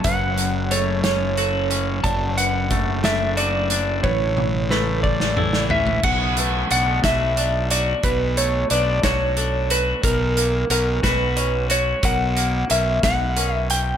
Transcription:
Already playing: F#3 A3 C#4 F#4
0.04 F#1 F#2 B4 F#5, kick, closed hi-hat
0.38 closed hi-hat
0.71 A3 A4 C#5, closed hi-hat
1.04 C#4 C#5, snare, closed hi-hat
1.37 F#4 A4, closed hi-hat
1.70 C#4, closed hi-hat
2.04 F#1 F#3 A3 D4 D5 A5, kick, closed hi-hat
2.37 B4 F#5, closed hi-hat
2.70 A3, kick, closed hi-hat
3.04 D4 A4 E5, snare, closed hi-hat
3.37 F#4 D5, closed hi-hat
3.70 D4, closed hi-hat
4.03 A1 A2 C#3 E3 B4 C#5, kick
4.37 high tom
4.70 A3 A4 B4, snare
5.03 D5, kick
5.20 snare
5.37 E4 A4, mid tom
5.53 snare
5.70 C#4 E5, floor tom
5.87 floor tom
6.03 B1 B2 F#5, kick, crash
6.37 A3 B4, closed hi-hat
6.70 B1 D4 F#5, closed hi-hat
7.04 B1 F#4 E5, kick, snare, closed hi-hat
7.37 D4 D5, closed hi-hat
7.71 F#4 D5, closed hi-hat
8.03 B1 B2 B4, kick, closed hi-hat
8.37 A3 C#5, closed hi-hat
8.70 B1 D4 B4 D5, closed hi-hat
9.03 B1 F#4 C#5, kick, snare, closed hi-hat
9.37 D4 A4, closed hi-hat
9.70 F#4 B4, closed hi-hat
10.03 B1 B2 A#4, kick, closed hi-hat
10.37 A#3 A#4, closed hi-hat
10.70 B1 C#4 A#4 F#5, closed hi-hat
11.03 B1 F#4 B4, kick, snare, closed hi-hat
11.36 C#4 C#5, closed hi-hat
11.70 F#4 C#5, closed hi-hat
12.03 B1 B2 A#4 F#5, kick, closed hi-hat
12.36 A#3, closed hi-hat
12.69 B1 C#4 A#4 E5, closed hi-hat
13.03 B1 F#5, kick, snare, closed hi-hat
13.36 C#4 A#4, closed hi-hat
13.56 E5
13.70 G5, closed hi-hat

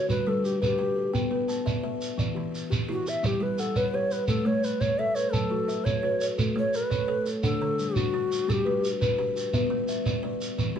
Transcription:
Already playing: F#4 G4
0.09 G3 F#4 B4, shekere
0.27 G3 A4 B4
0.45 G4, shekere
0.62 A4 B4, shekere
0.67 G4
0.78 G4 B4
0.96 A4
1.13 B3 G5, shekere
1.30 B3 B4
1.48 B4 A5, shekere
1.66 D5 E5, shekere
1.83 B4 E5
2.01 shekere
2.18 E3 D5, shekere
2.35 E3 G4
2.55 shekere
2.70 G4, shekere
2.89 E4 F#4 G4
3.07 E5, shekere
3.23 G3 G4 E5, shekere
3.40 G3 G4 B4
3.58 G4 A4 F#5, shekere
3.76 B4 C#5, shekere
3.93 G4 C#5
4.11 B4, shekere
4.28 A3 A4 B4, shekere
4.45 A3 C#5
4.64 B4, shekere
4.81 C#5, shekere
4.99 A4 C#5 E5
5.15 B4 C#5, shekere
5.32 F#3 A4 A5, shekere
5.50 F#3 F#4
5.68 F#4 E5, shekere
5.85 A4 B4 C#5, shekere
6.03 F#4 B4
6.21 A4, shekere
6.38 A3 A4, shekere
6.56 A3 C#5
6.74 B4, shekere
6.90 C#5, shekere
7.08 A4 C#5
7.26 A4, shekere
7.43 D3 D4 A4 F#5, shekere
7.62 D3 C#5
7.79 G3, shekere
7.95 D4 F#4, shekere
8.13 D4 F#4
8.32 shekere
8.48 G3 D4 A4, shekere
8.53 G4
8.65 G3 B4
8.84 shekere
9.01 B4, shekere
9.18 G4 B4
9.36 G4, shekere
9.53 B3 B4 E5, shekere
9.70 B3
9.88 E5, shekere
10.06 B4 D5, shekere
10.23 B4 D5
10.41 shekere
10.58 E3 B4, shekere
10.76 E3 G4

